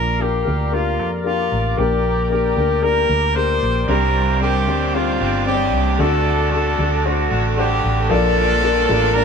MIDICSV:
0, 0, Header, 1, 7, 480
1, 0, Start_track
1, 0, Tempo, 526316
1, 1627, Time_signature, 4, 2, 24, 8
1, 8431, End_track
2, 0, Start_track
2, 0, Title_t, "Analog synth pad"
2, 0, Program_c, 0, 89
2, 0, Note_on_c, 0, 70, 71
2, 0, Note_on_c, 0, 74, 73
2, 0, Note_on_c, 0, 77, 69
2, 0, Note_on_c, 0, 86, 79
2, 1605, Note_off_c, 0, 70, 0
2, 1605, Note_off_c, 0, 77, 0
2, 1631, Note_on_c, 0, 79, 62
2, 1633, Note_on_c, 0, 70, 80
2, 3507, Note_off_c, 0, 74, 0
2, 3530, Note_off_c, 0, 70, 0
2, 3541, Note_on_c, 0, 72, 73
2, 3542, Note_on_c, 0, 74, 73
2, 5432, Note_off_c, 0, 79, 0
2, 5444, Note_off_c, 0, 72, 0
2, 5465, Note_on_c, 0, 69, 73
2, 5466, Note_on_c, 0, 78, 69
2, 7347, Note_off_c, 0, 74, 0
2, 7347, Note_off_c, 0, 86, 0
2, 7366, Note_off_c, 0, 69, 0
2, 7366, Note_off_c, 0, 78, 0
2, 7390, Note_on_c, 0, 81, 72
2, 7393, Note_on_c, 0, 58, 81
2, 7393, Note_on_c, 0, 86, 87
2, 7395, Note_on_c, 0, 77, 77
2, 8431, Note_off_c, 0, 58, 0
2, 8431, Note_off_c, 0, 77, 0
2, 8431, Note_off_c, 0, 81, 0
2, 8431, Note_off_c, 0, 86, 0
2, 8431, End_track
3, 0, Start_track
3, 0, Title_t, "Violin section"
3, 0, Program_c, 1, 48
3, 7384, Note_on_c, 1, 62, 80
3, 7387, Note_on_c, 1, 74, 85
3, 8431, Note_off_c, 1, 62, 0
3, 8431, Note_off_c, 1, 74, 0
3, 8431, End_track
4, 0, Start_track
4, 0, Title_t, "Trumpet"
4, 0, Program_c, 2, 56
4, 0, Note_on_c, 2, 70, 87
4, 194, Note_on_c, 2, 67, 76
4, 208, Note_off_c, 2, 70, 0
4, 672, Note_on_c, 2, 65, 82
4, 686, Note_off_c, 2, 67, 0
4, 1005, Note_off_c, 2, 65, 0
4, 1145, Note_on_c, 2, 65, 82
4, 1622, Note_on_c, 2, 67, 76
4, 1636, Note_off_c, 2, 65, 0
4, 2099, Note_off_c, 2, 67, 0
4, 2104, Note_on_c, 2, 67, 82
4, 2581, Note_on_c, 2, 70, 98
4, 2594, Note_off_c, 2, 67, 0
4, 3059, Note_on_c, 2, 72, 93
4, 3073, Note_off_c, 2, 70, 0
4, 3543, Note_off_c, 2, 72, 0
4, 3548, Note_on_c, 2, 70, 83
4, 3994, Note_off_c, 2, 70, 0
4, 4033, Note_on_c, 2, 67, 86
4, 4508, Note_on_c, 2, 65, 89
4, 4522, Note_off_c, 2, 67, 0
4, 4979, Note_off_c, 2, 65, 0
4, 4985, Note_on_c, 2, 67, 93
4, 5472, Note_on_c, 2, 69, 83
4, 5485, Note_off_c, 2, 67, 0
4, 5946, Note_off_c, 2, 69, 0
4, 5951, Note_on_c, 2, 69, 80
4, 6436, Note_on_c, 2, 66, 74
4, 6449, Note_off_c, 2, 69, 0
4, 6782, Note_off_c, 2, 66, 0
4, 6924, Note_on_c, 2, 67, 89
4, 7391, Note_on_c, 2, 69, 101
4, 7405, Note_off_c, 2, 67, 0
4, 8337, Note_on_c, 2, 70, 110
4, 8350, Note_off_c, 2, 69, 0
4, 8431, Note_off_c, 2, 70, 0
4, 8431, End_track
5, 0, Start_track
5, 0, Title_t, "Upright piano"
5, 0, Program_c, 3, 0
5, 0, Control_c, 3, 64, 127
5, 0, Note_on_c, 3, 46, 54
5, 0, Note_on_c, 3, 58, 85
5, 0, Note_on_c, 3, 62, 76
5, 0, Note_on_c, 3, 65, 73
5, 0, Note_on_c, 3, 70, 88
5, 145, Note_off_c, 3, 58, 0
5, 150, Note_off_c, 3, 62, 0
5, 151, Note_off_c, 3, 65, 0
5, 156, Note_off_c, 3, 70, 0
5, 179, Note_on_c, 3, 58, 67
5, 184, Note_on_c, 3, 62, 56
5, 189, Note_on_c, 3, 65, 57
5, 194, Note_on_c, 3, 70, 67
5, 390, Note_off_c, 3, 46, 0
5, 395, Note_off_c, 3, 58, 0
5, 404, Note_off_c, 3, 62, 0
5, 409, Note_off_c, 3, 65, 0
5, 409, Note_on_c, 3, 58, 62
5, 412, Note_off_c, 3, 70, 0
5, 418, Note_on_c, 3, 62, 56
5, 422, Note_on_c, 3, 65, 51
5, 429, Note_on_c, 3, 70, 62
5, 640, Note_off_c, 3, 58, 0
5, 644, Note_off_c, 3, 62, 0
5, 646, Note_off_c, 3, 65, 0
5, 649, Note_off_c, 3, 70, 0
5, 657, Note_on_c, 3, 58, 69
5, 661, Note_on_c, 3, 62, 59
5, 669, Note_on_c, 3, 65, 58
5, 677, Note_on_c, 3, 67, 65
5, 1105, Note_off_c, 3, 58, 0
5, 1107, Note_off_c, 3, 62, 0
5, 1111, Note_off_c, 3, 65, 0
5, 1115, Note_off_c, 3, 67, 0
5, 1133, Note_on_c, 3, 58, 65
5, 1140, Note_on_c, 3, 62, 66
5, 1146, Note_on_c, 3, 65, 59
5, 1151, Note_on_c, 3, 67, 73
5, 1583, Note_off_c, 3, 58, 0
5, 1586, Note_off_c, 3, 62, 0
5, 1589, Note_off_c, 3, 65, 0
5, 1592, Note_off_c, 3, 67, 0
5, 1618, Note_on_c, 3, 58, 85
5, 1625, Note_on_c, 3, 62, 78
5, 1626, Note_on_c, 3, 46, 57
5, 1629, Note_on_c, 3, 67, 75
5, 1637, Control_c, 3, 64, 0
5, 1637, Note_on_c, 3, 70, 89
5, 1821, Control_c, 3, 64, 127
5, 2065, Note_off_c, 3, 58, 0
5, 2069, Note_off_c, 3, 62, 0
5, 2071, Note_off_c, 3, 67, 0
5, 2075, Note_off_c, 3, 70, 0
5, 2095, Note_on_c, 3, 58, 64
5, 2103, Note_on_c, 3, 62, 65
5, 2106, Note_on_c, 3, 67, 57
5, 2115, Note_on_c, 3, 70, 73
5, 2310, Note_off_c, 3, 46, 0
5, 2323, Note_off_c, 3, 58, 0
5, 2327, Note_off_c, 3, 62, 0
5, 2328, Note_off_c, 3, 67, 0
5, 2332, Note_off_c, 3, 70, 0
5, 2338, Note_on_c, 3, 58, 64
5, 2341, Note_on_c, 3, 62, 58
5, 2348, Note_on_c, 3, 67, 56
5, 2354, Note_on_c, 3, 70, 70
5, 2560, Note_off_c, 3, 58, 0
5, 2564, Note_off_c, 3, 62, 0
5, 2569, Note_off_c, 3, 67, 0
5, 2572, Note_off_c, 3, 70, 0
5, 2573, Note_on_c, 3, 58, 67
5, 2577, Note_on_c, 3, 62, 65
5, 2583, Note_on_c, 3, 67, 63
5, 2587, Note_on_c, 3, 70, 73
5, 3023, Note_off_c, 3, 58, 0
5, 3025, Note_off_c, 3, 62, 0
5, 3028, Note_off_c, 3, 67, 0
5, 3030, Note_off_c, 3, 70, 0
5, 3052, Note_on_c, 3, 58, 72
5, 3057, Note_on_c, 3, 62, 64
5, 3064, Note_on_c, 3, 67, 58
5, 3070, Note_on_c, 3, 70, 79
5, 3502, Note_off_c, 3, 58, 0
5, 3505, Note_off_c, 3, 62, 0
5, 3508, Note_off_c, 3, 67, 0
5, 3511, Note_off_c, 3, 70, 0
5, 3536, Note_on_c, 3, 60, 84
5, 3540, Note_on_c, 3, 62, 77
5, 3545, Note_on_c, 3, 48, 65
5, 3548, Note_on_c, 3, 67, 73
5, 3552, Note_on_c, 3, 72, 95
5, 3559, Control_c, 3, 64, 0
5, 3696, Control_c, 3, 64, 127
5, 3984, Note_off_c, 3, 60, 0
5, 3987, Note_off_c, 3, 62, 0
5, 3991, Note_off_c, 3, 67, 0
5, 3993, Note_off_c, 3, 72, 0
5, 4014, Note_on_c, 3, 60, 61
5, 4018, Note_on_c, 3, 62, 62
5, 4026, Note_on_c, 3, 67, 60
5, 4033, Note_on_c, 3, 70, 74
5, 4229, Note_off_c, 3, 48, 0
5, 4242, Note_off_c, 3, 60, 0
5, 4244, Note_off_c, 3, 62, 0
5, 4248, Note_off_c, 3, 67, 0
5, 4251, Note_off_c, 3, 70, 0
5, 4258, Note_on_c, 3, 60, 66
5, 4264, Note_on_c, 3, 62, 60
5, 4270, Note_on_c, 3, 67, 64
5, 4272, Note_on_c, 3, 72, 72
5, 4484, Note_off_c, 3, 60, 0
5, 4487, Note_off_c, 3, 62, 0
5, 4490, Note_off_c, 3, 67, 0
5, 4491, Note_off_c, 3, 72, 0
5, 4498, Note_on_c, 3, 60, 68
5, 4507, Note_on_c, 3, 62, 66
5, 4511, Note_on_c, 3, 67, 64
5, 4517, Note_on_c, 3, 72, 79
5, 4946, Note_off_c, 3, 60, 0
5, 4950, Note_off_c, 3, 62, 0
5, 4952, Note_off_c, 3, 67, 0
5, 4955, Note_off_c, 3, 72, 0
5, 4980, Note_on_c, 3, 60, 77
5, 4985, Note_on_c, 3, 62, 65
5, 4992, Note_on_c, 3, 67, 64
5, 4996, Note_on_c, 3, 73, 58
5, 5049, Note_off_c, 3, 73, 0
5, 5053, Note_on_c, 3, 74, 78
5, 5427, Note_off_c, 3, 60, 0
5, 5429, Note_off_c, 3, 62, 0
5, 5432, Note_off_c, 3, 67, 0
5, 5457, Note_on_c, 3, 57, 95
5, 5462, Note_on_c, 3, 62, 83
5, 5463, Note_off_c, 3, 74, 0
5, 5467, Note_on_c, 3, 50, 66
5, 5467, Note_on_c, 3, 66, 89
5, 5475, Note_on_c, 3, 69, 103
5, 5477, Control_c, 3, 64, 0
5, 5629, Control_c, 3, 64, 127
5, 5905, Note_off_c, 3, 57, 0
5, 5908, Note_off_c, 3, 62, 0
5, 5910, Note_off_c, 3, 66, 0
5, 5914, Note_off_c, 3, 69, 0
5, 5944, Note_on_c, 3, 57, 71
5, 5950, Note_on_c, 3, 62, 61
5, 5955, Note_on_c, 3, 66, 63
5, 5963, Note_on_c, 3, 69, 76
5, 6150, Note_off_c, 3, 50, 0
5, 6167, Note_off_c, 3, 57, 0
5, 6170, Note_off_c, 3, 62, 0
5, 6173, Note_off_c, 3, 66, 0
5, 6176, Note_off_c, 3, 69, 0
5, 6187, Note_on_c, 3, 57, 62
5, 6191, Note_on_c, 3, 62, 61
5, 6199, Note_on_c, 3, 66, 63
5, 6203, Note_on_c, 3, 69, 73
5, 6405, Note_off_c, 3, 57, 0
5, 6410, Note_off_c, 3, 62, 0
5, 6414, Note_off_c, 3, 66, 0
5, 6416, Note_off_c, 3, 69, 0
5, 6419, Note_on_c, 3, 57, 72
5, 6427, Note_on_c, 3, 62, 63
5, 6432, Note_on_c, 3, 66, 67
5, 6437, Note_on_c, 3, 72, 79
5, 6866, Note_off_c, 3, 57, 0
5, 6870, Note_off_c, 3, 62, 0
5, 6872, Note_off_c, 3, 66, 0
5, 6875, Note_off_c, 3, 72, 0
5, 6902, Note_on_c, 3, 57, 75
5, 6907, Note_on_c, 3, 62, 63
5, 6915, Note_on_c, 3, 78, 68
5, 6922, Note_on_c, 3, 72, 76
5, 7347, Note_off_c, 3, 57, 0
5, 7350, Note_off_c, 3, 62, 0
5, 7354, Note_off_c, 3, 78, 0
5, 7357, Note_off_c, 3, 72, 0
5, 7383, Note_on_c, 3, 58, 93
5, 7386, Note_on_c, 3, 62, 87
5, 7390, Note_on_c, 3, 46, 69
5, 7391, Note_on_c, 3, 65, 86
5, 7396, Note_on_c, 3, 69, 89
5, 7397, Control_c, 3, 64, 0
5, 7399, Note_on_c, 3, 74, 103
5, 7584, Control_c, 3, 64, 127
5, 7827, Note_off_c, 3, 58, 0
5, 7829, Note_off_c, 3, 62, 0
5, 7831, Note_off_c, 3, 65, 0
5, 7834, Note_off_c, 3, 69, 0
5, 7836, Note_off_c, 3, 74, 0
5, 7865, Note_on_c, 3, 58, 77
5, 7868, Note_on_c, 3, 62, 65
5, 7873, Note_on_c, 3, 65, 70
5, 7876, Note_on_c, 3, 69, 71
5, 7881, Note_on_c, 3, 70, 83
5, 8071, Note_off_c, 3, 46, 0
5, 8087, Note_off_c, 3, 58, 0
5, 8088, Note_off_c, 3, 62, 0
5, 8091, Note_off_c, 3, 65, 0
5, 8092, Note_off_c, 3, 69, 0
5, 8095, Note_off_c, 3, 70, 0
5, 8101, Note_on_c, 3, 58, 85
5, 8107, Note_on_c, 3, 62, 82
5, 8110, Note_on_c, 3, 65, 74
5, 8117, Note_on_c, 3, 69, 79
5, 8121, Note_on_c, 3, 70, 89
5, 8324, Note_off_c, 3, 58, 0
5, 8328, Note_off_c, 3, 62, 0
5, 8329, Note_off_c, 3, 65, 0
5, 8333, Note_off_c, 3, 69, 0
5, 8335, Note_off_c, 3, 70, 0
5, 8342, Note_on_c, 3, 58, 72
5, 8345, Note_on_c, 3, 62, 75
5, 8350, Note_on_c, 3, 65, 64
5, 8354, Note_on_c, 3, 81, 67
5, 8358, Note_on_c, 3, 74, 80
5, 8431, Note_off_c, 3, 58, 0
5, 8431, Note_off_c, 3, 62, 0
5, 8431, Note_off_c, 3, 65, 0
5, 8431, Note_off_c, 3, 74, 0
5, 8431, Note_off_c, 3, 81, 0
5, 8431, End_track
6, 0, Start_track
6, 0, Title_t, "Overdriven electric guitar"
6, 0, Program_c, 4, 29
6, 3538, Note_on_c, 4, 48, 81
6, 3542, Note_on_c, 4, 55, 92
6, 3548, Note_on_c, 4, 60, 80
6, 3550, Note_on_c, 4, 62, 81
6, 3556, Note_on_c, 4, 67, 85
6, 4006, Note_off_c, 4, 55, 0
6, 4017, Note_on_c, 4, 55, 65
6, 4018, Note_off_c, 4, 60, 0
6, 4022, Note_off_c, 4, 48, 0
6, 4028, Note_off_c, 4, 67, 0
6, 4029, Note_on_c, 4, 60, 61
6, 4032, Note_off_c, 4, 62, 0
6, 4036, Note_on_c, 4, 62, 67
6, 4039, Note_on_c, 4, 67, 67
6, 4250, Note_off_c, 4, 67, 0
6, 4261, Note_on_c, 4, 67, 57
6, 4262, Note_off_c, 4, 55, 0
6, 4264, Note_off_c, 4, 62, 0
6, 4268, Note_off_c, 4, 60, 0
6, 4275, Note_on_c, 4, 62, 51
6, 4283, Note_on_c, 4, 60, 41
6, 4732, Note_off_c, 4, 67, 0
6, 4742, Note_on_c, 4, 67, 55
6, 4750, Note_off_c, 4, 62, 0
6, 4752, Note_off_c, 4, 60, 0
6, 4754, Note_on_c, 4, 62, 52
6, 4763, Note_on_c, 4, 60, 46
6, 4976, Note_off_c, 4, 60, 0
6, 4979, Note_on_c, 4, 55, 64
6, 4985, Note_off_c, 4, 62, 0
6, 4985, Note_off_c, 4, 67, 0
6, 4987, Note_on_c, 4, 60, 66
6, 4996, Note_on_c, 4, 62, 75
6, 5000, Note_on_c, 4, 67, 79
6, 5463, Note_off_c, 4, 55, 0
6, 5463, Note_on_c, 4, 50, 78
6, 5467, Note_off_c, 4, 60, 0
6, 5470, Note_on_c, 4, 57, 83
6, 5473, Note_off_c, 4, 62, 0
6, 5473, Note_off_c, 4, 67, 0
6, 5473, Note_on_c, 4, 62, 85
6, 5479, Note_on_c, 4, 66, 88
6, 5481, Note_on_c, 4, 69, 89
6, 5937, Note_off_c, 4, 57, 0
6, 5941, Note_on_c, 4, 57, 68
6, 5948, Note_off_c, 4, 62, 0
6, 5948, Note_off_c, 4, 66, 0
6, 5951, Note_on_c, 4, 62, 61
6, 5959, Note_on_c, 4, 66, 62
6, 5960, Note_off_c, 4, 69, 0
6, 5964, Note_on_c, 4, 69, 69
6, 6170, Note_off_c, 4, 69, 0
6, 6181, Note_on_c, 4, 69, 58
6, 6184, Note_off_c, 4, 57, 0
6, 6184, Note_off_c, 4, 66, 0
6, 6189, Note_off_c, 4, 62, 0
6, 6195, Note_on_c, 4, 66, 50
6, 6205, Note_on_c, 4, 62, 45
6, 6658, Note_off_c, 4, 69, 0
6, 6661, Note_on_c, 4, 69, 56
6, 6664, Note_off_c, 4, 66, 0
6, 6675, Note_on_c, 4, 66, 54
6, 6682, Note_off_c, 4, 62, 0
6, 6686, Note_on_c, 4, 62, 50
6, 6904, Note_off_c, 4, 62, 0
6, 6904, Note_off_c, 4, 69, 0
6, 6905, Note_on_c, 4, 57, 69
6, 6908, Note_off_c, 4, 66, 0
6, 6915, Note_on_c, 4, 62, 75
6, 6919, Note_on_c, 4, 66, 78
6, 6927, Note_on_c, 4, 69, 71
6, 7383, Note_on_c, 4, 46, 94
6, 7386, Note_off_c, 4, 50, 0
6, 7386, Note_off_c, 4, 57, 0
6, 7389, Note_off_c, 4, 62, 0
6, 7389, Note_on_c, 4, 50, 83
6, 7390, Note_on_c, 4, 53, 100
6, 7392, Note_off_c, 4, 66, 0
6, 7392, Note_on_c, 4, 58, 96
6, 7396, Note_off_c, 4, 69, 0
6, 7397, Note_on_c, 4, 62, 105
6, 7399, Note_on_c, 4, 69, 100
6, 7617, Note_off_c, 4, 69, 0
6, 7624, Note_off_c, 4, 46, 0
6, 7626, Note_off_c, 4, 62, 0
6, 7627, Note_off_c, 4, 50, 0
6, 7628, Note_off_c, 4, 53, 0
6, 7628, Note_on_c, 4, 69, 62
6, 7629, Note_off_c, 4, 58, 0
6, 7637, Note_on_c, 4, 62, 60
6, 7644, Note_on_c, 4, 58, 54
6, 7650, Note_on_c, 4, 53, 47
6, 7853, Note_off_c, 4, 53, 0
6, 7863, Note_off_c, 4, 58, 0
6, 7864, Note_on_c, 4, 53, 72
6, 7867, Note_off_c, 4, 69, 0
6, 7869, Note_off_c, 4, 62, 0
6, 7874, Note_on_c, 4, 58, 66
6, 7880, Note_on_c, 4, 62, 81
6, 7886, Note_on_c, 4, 69, 71
6, 8098, Note_off_c, 4, 69, 0
6, 8105, Note_off_c, 4, 53, 0
6, 8107, Note_off_c, 4, 62, 0
6, 8108, Note_on_c, 4, 69, 57
6, 8110, Note_off_c, 4, 58, 0
6, 8118, Note_on_c, 4, 62, 62
6, 8124, Note_on_c, 4, 58, 59
6, 8129, Note_on_c, 4, 53, 55
6, 8431, Note_off_c, 4, 53, 0
6, 8431, Note_off_c, 4, 58, 0
6, 8431, Note_off_c, 4, 62, 0
6, 8431, Note_off_c, 4, 69, 0
6, 8431, End_track
7, 0, Start_track
7, 0, Title_t, "Fingered electric bass"
7, 0, Program_c, 5, 33
7, 0, Note_on_c, 5, 34, 97
7, 392, Note_off_c, 5, 34, 0
7, 431, Note_on_c, 5, 38, 75
7, 905, Note_off_c, 5, 38, 0
7, 905, Note_on_c, 5, 41, 84
7, 1352, Note_off_c, 5, 41, 0
7, 1385, Note_on_c, 5, 33, 81
7, 1609, Note_off_c, 5, 33, 0
7, 1625, Note_on_c, 5, 34, 97
7, 2310, Note_off_c, 5, 34, 0
7, 2344, Note_on_c, 5, 38, 69
7, 2791, Note_off_c, 5, 38, 0
7, 2821, Note_on_c, 5, 38, 81
7, 3270, Note_off_c, 5, 38, 0
7, 3307, Note_on_c, 5, 34, 79
7, 3530, Note_off_c, 5, 34, 0
7, 3542, Note_on_c, 5, 36, 102
7, 4268, Note_off_c, 5, 36, 0
7, 4268, Note_on_c, 5, 38, 80
7, 4714, Note_off_c, 5, 38, 0
7, 4748, Note_on_c, 5, 31, 83
7, 5229, Note_off_c, 5, 31, 0
7, 5229, Note_on_c, 5, 36, 85
7, 5451, Note_off_c, 5, 36, 0
7, 5467, Note_on_c, 5, 38, 102
7, 6151, Note_off_c, 5, 38, 0
7, 6190, Note_on_c, 5, 38, 81
7, 6635, Note_off_c, 5, 38, 0
7, 6668, Note_on_c, 5, 33, 76
7, 7113, Note_off_c, 5, 33, 0
7, 7153, Note_on_c, 5, 33, 88
7, 7373, Note_off_c, 5, 33, 0
7, 7391, Note_on_c, 5, 34, 101
7, 8072, Note_off_c, 5, 34, 0
7, 8113, Note_on_c, 5, 33, 96
7, 8431, Note_off_c, 5, 33, 0
7, 8431, End_track
0, 0, End_of_file